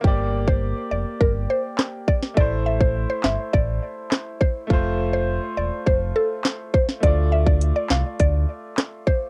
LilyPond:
<<
  \new Staff \with { instrumentName = "Synth pluck" } { \time 4/4 \key g \dorian \tempo 4 = 103 r8. c''8 r16 d''8 bes'16 r16 c''16 r8. d''16 r16 | d''16 r16 e''16 c''16 r16 c''16 e''16 r16 d''8. r8. c''16 r16 | r8. c''8 r16 d''8 c''16 r16 a'16 r8. c''16 r16 | d''16 r16 e''16 d''16 r16 d''16 f''16 r16 d''8. r8. c''16 r16 | }
  \new Staff \with { instrumentName = "Grand piano" } { \time 4/4 \key g \dorian <bes g' d''>1 | <a e' c''>1 | <a f' c''>1 | <a f' d''>1 | }
  \new Staff \with { instrumentName = "Sub bass" } { \clef bass \time 4/4 \key g \dorian g,,4~ g,,16 r16 f,,16 r16 g,,8 r4. | a,,4~ a,,16 r16 g,,16 r16 a,,8 r4. | f,,4~ f,,16 r16 e,,16 r16 f,,8 r4. | d,4~ d,16 r16 c,16 r16 d,8 r4. | }
  \new DrumStaff \with { instrumentName = "Drums" } \drummode { \time 4/4 bd8. bd16 r4 bd4 <hc ss sn>8 bd16 sn16 | bd8. bd16 r8 <hc sn>8 bd4 <hc ss sn>8 bd8 | bd4 r4 bd4 <hc sn>8 bd16 sn16 | <hh bd>8. bd16 hh8 <hc sn>8 <hh bd>4 <hc hh ss sn>8 bd8 | }
>>